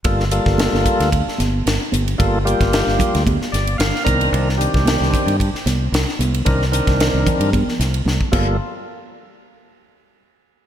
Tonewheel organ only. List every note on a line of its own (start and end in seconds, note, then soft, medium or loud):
0.04 0.24 G3 medium
0.04 0.25 A#3 medium
0.04 0.25 F4 medium
0.04 0.25 A4 medium
0.31 1.10 G3 medium
0.31 1.10 A#3 medium
0.31 1.10 F4 medium
0.31 1.10 A4 medium
2.18 2.38 G3 medium
2.18 2.39 A#3 medium
2.18 2.39 F4 medium
2.18 2.39 A4 medium
2.45 3.23 G3 medium
2.45 3.24 A#3 medium
2.45 3.24 F4 medium
2.45 3.24 G4 medium
3.52 3.77 D5 medium
3.78 4.04 F5 medium
4.04 4.49 D#3 medium
4.04 4.49 C4 medium
4.04 4.49 D4 medium
4.04 4.49 A#4 medium
4.04 4.30 A#5 medium
4.58 5.37 D#3 medium
4.58 5.37 C4 medium
4.58 5.36 D4 medium
4.58 5.37 G4 medium
6.45 6.65 D#3 medium
6.45 6.66 C4 medium
6.45 6.66 D4 medium
6.45 6.66 A#4 medium
6.72 7.50 D#3 medium
6.72 7.50 C4 medium
6.72 7.50 D4 medium
6.72 7.50 A#4 medium
8.32 8.57 G3 medium
8.32 8.57 A#3 medium
8.32 8.57 F4 medium
8.32 8.57 A4 medium